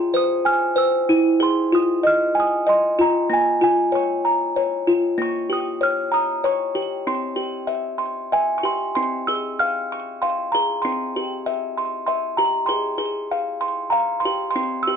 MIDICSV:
0, 0, Header, 1, 2, 480
1, 0, Start_track
1, 0, Key_signature, -4, "minor"
1, 0, Tempo, 635593
1, 1077, Time_signature, 3, 2, 24, 8
1, 2513, Tempo, 622407
1, 5873, Tempo, 631579
1, 6842, Key_signature, -4, "minor"
1, 8273, Tempo, 620476
1, 11463, End_track
2, 0, Start_track
2, 0, Title_t, "Music box"
2, 0, Program_c, 0, 10
2, 0, Note_on_c, 0, 65, 64
2, 0, Note_on_c, 0, 68, 81
2, 0, Note_on_c, 0, 84, 92
2, 103, Note_on_c, 0, 72, 73
2, 125, Note_on_c, 0, 87, 79
2, 130, Note_off_c, 0, 84, 0
2, 341, Note_on_c, 0, 80, 69
2, 347, Note_on_c, 0, 89, 80
2, 363, Note_off_c, 0, 87, 0
2, 563, Note_off_c, 0, 72, 0
2, 572, Note_on_c, 0, 72, 77
2, 585, Note_off_c, 0, 65, 0
2, 586, Note_off_c, 0, 80, 0
2, 588, Note_on_c, 0, 88, 87
2, 590, Note_off_c, 0, 68, 0
2, 597, Note_off_c, 0, 89, 0
2, 824, Note_on_c, 0, 64, 69
2, 928, Note_off_c, 0, 88, 0
2, 1057, Note_on_c, 0, 68, 75
2, 1067, Note_off_c, 0, 72, 0
2, 1072, Note_off_c, 0, 64, 0
2, 1077, Note_on_c, 0, 84, 89
2, 1302, Note_on_c, 0, 65, 65
2, 1320, Note_on_c, 0, 87, 84
2, 1326, Note_off_c, 0, 84, 0
2, 1536, Note_on_c, 0, 75, 81
2, 1561, Note_on_c, 0, 89, 88
2, 1567, Note_off_c, 0, 87, 0
2, 1774, Note_on_c, 0, 80, 67
2, 1807, Note_off_c, 0, 89, 0
2, 1811, Note_on_c, 0, 87, 87
2, 2004, Note_off_c, 0, 75, 0
2, 2013, Note_on_c, 0, 75, 76
2, 2028, Note_off_c, 0, 68, 0
2, 2033, Note_on_c, 0, 84, 84
2, 2051, Note_off_c, 0, 87, 0
2, 2248, Note_off_c, 0, 65, 0
2, 2257, Note_on_c, 0, 65, 74
2, 2274, Note_on_c, 0, 82, 76
2, 2280, Note_off_c, 0, 84, 0
2, 2489, Note_on_c, 0, 58, 82
2, 2500, Note_off_c, 0, 75, 0
2, 2500, Note_off_c, 0, 80, 0
2, 2503, Note_off_c, 0, 65, 0
2, 2517, Note_on_c, 0, 80, 80
2, 2519, Note_off_c, 0, 82, 0
2, 2732, Note_on_c, 0, 65, 65
2, 2741, Note_off_c, 0, 80, 0
2, 2750, Note_on_c, 0, 80, 76
2, 2971, Note_on_c, 0, 73, 76
2, 2975, Note_off_c, 0, 80, 0
2, 2996, Note_on_c, 0, 85, 69
2, 3223, Note_on_c, 0, 82, 75
2, 3447, Note_off_c, 0, 85, 0
2, 3456, Note_off_c, 0, 73, 0
2, 3464, Note_off_c, 0, 58, 0
2, 3466, Note_on_c, 0, 73, 76
2, 3695, Note_off_c, 0, 65, 0
2, 3704, Note_on_c, 0, 65, 77
2, 3940, Note_on_c, 0, 58, 84
2, 3952, Note_off_c, 0, 65, 0
2, 3953, Note_off_c, 0, 82, 0
2, 3954, Note_off_c, 0, 73, 0
2, 3971, Note_on_c, 0, 85, 92
2, 4185, Note_on_c, 0, 67, 76
2, 4209, Note_on_c, 0, 87, 83
2, 4212, Note_off_c, 0, 85, 0
2, 4426, Note_off_c, 0, 87, 0
2, 4427, Note_on_c, 0, 73, 74
2, 4445, Note_on_c, 0, 89, 86
2, 4664, Note_on_c, 0, 82, 71
2, 4681, Note_on_c, 0, 87, 85
2, 4686, Note_off_c, 0, 89, 0
2, 4901, Note_off_c, 0, 87, 0
2, 4904, Note_off_c, 0, 73, 0
2, 4906, Note_off_c, 0, 58, 0
2, 4913, Note_on_c, 0, 73, 82
2, 4923, Note_on_c, 0, 85, 85
2, 5142, Note_off_c, 0, 67, 0
2, 5152, Note_on_c, 0, 67, 71
2, 5367, Note_off_c, 0, 85, 0
2, 5388, Note_off_c, 0, 82, 0
2, 5392, Note_off_c, 0, 67, 0
2, 5393, Note_off_c, 0, 73, 0
2, 5399, Note_on_c, 0, 60, 76
2, 5401, Note_on_c, 0, 84, 75
2, 5622, Note_on_c, 0, 67, 69
2, 5864, Note_on_c, 0, 76, 82
2, 6090, Note_off_c, 0, 84, 0
2, 6099, Note_on_c, 0, 84, 61
2, 6349, Note_off_c, 0, 76, 0
2, 6358, Note_on_c, 0, 76, 69
2, 6359, Note_off_c, 0, 60, 0
2, 6365, Note_on_c, 0, 80, 82
2, 6537, Note_off_c, 0, 80, 0
2, 6553, Note_on_c, 0, 85, 63
2, 6584, Note_off_c, 0, 67, 0
2, 6593, Note_on_c, 0, 67, 69
2, 6599, Note_off_c, 0, 84, 0
2, 6603, Note_off_c, 0, 85, 0
2, 6608, Note_on_c, 0, 84, 73
2, 6828, Note_off_c, 0, 84, 0
2, 6837, Note_on_c, 0, 84, 92
2, 6839, Note_off_c, 0, 67, 0
2, 6843, Note_off_c, 0, 76, 0
2, 6846, Note_on_c, 0, 60, 81
2, 7080, Note_on_c, 0, 88, 82
2, 7088, Note_off_c, 0, 84, 0
2, 7088, Note_on_c, 0, 68, 64
2, 7304, Note_off_c, 0, 88, 0
2, 7324, Note_on_c, 0, 89, 84
2, 7330, Note_on_c, 0, 77, 75
2, 7569, Note_off_c, 0, 89, 0
2, 7574, Note_on_c, 0, 85, 80
2, 7795, Note_off_c, 0, 77, 0
2, 7797, Note_on_c, 0, 84, 82
2, 7801, Note_off_c, 0, 60, 0
2, 7804, Note_on_c, 0, 77, 72
2, 7813, Note_off_c, 0, 85, 0
2, 8028, Note_on_c, 0, 82, 70
2, 8039, Note_off_c, 0, 68, 0
2, 8043, Note_off_c, 0, 84, 0
2, 8048, Note_on_c, 0, 68, 70
2, 8255, Note_on_c, 0, 84, 88
2, 8277, Note_off_c, 0, 77, 0
2, 8277, Note_off_c, 0, 82, 0
2, 8278, Note_on_c, 0, 60, 79
2, 8280, Note_off_c, 0, 68, 0
2, 8520, Note_on_c, 0, 67, 64
2, 8753, Note_on_c, 0, 76, 81
2, 8985, Note_off_c, 0, 84, 0
2, 8995, Note_on_c, 0, 84, 66
2, 9209, Note_off_c, 0, 84, 0
2, 9218, Note_on_c, 0, 84, 81
2, 9219, Note_off_c, 0, 76, 0
2, 9228, Note_on_c, 0, 76, 76
2, 9232, Note_off_c, 0, 60, 0
2, 9456, Note_off_c, 0, 67, 0
2, 9457, Note_on_c, 0, 82, 85
2, 9466, Note_on_c, 0, 67, 73
2, 9469, Note_off_c, 0, 84, 0
2, 9680, Note_on_c, 0, 84, 92
2, 9701, Note_on_c, 0, 68, 84
2, 9705, Note_off_c, 0, 67, 0
2, 9705, Note_off_c, 0, 76, 0
2, 9708, Note_off_c, 0, 82, 0
2, 9928, Note_off_c, 0, 68, 0
2, 9928, Note_on_c, 0, 68, 75
2, 10185, Note_on_c, 0, 77, 84
2, 10403, Note_off_c, 0, 84, 0
2, 10412, Note_on_c, 0, 84, 86
2, 10639, Note_on_c, 0, 82, 78
2, 10648, Note_off_c, 0, 77, 0
2, 10657, Note_on_c, 0, 77, 85
2, 10667, Note_off_c, 0, 84, 0
2, 10871, Note_on_c, 0, 84, 77
2, 10899, Note_off_c, 0, 68, 0
2, 10902, Note_off_c, 0, 82, 0
2, 10911, Note_on_c, 0, 67, 70
2, 11097, Note_off_c, 0, 84, 0
2, 11107, Note_on_c, 0, 84, 101
2, 11145, Note_off_c, 0, 77, 0
2, 11146, Note_on_c, 0, 60, 88
2, 11151, Note_off_c, 0, 67, 0
2, 11356, Note_on_c, 0, 88, 86
2, 11378, Note_off_c, 0, 84, 0
2, 11392, Note_on_c, 0, 67, 72
2, 11463, Note_off_c, 0, 60, 0
2, 11463, Note_off_c, 0, 67, 0
2, 11463, Note_off_c, 0, 88, 0
2, 11463, End_track
0, 0, End_of_file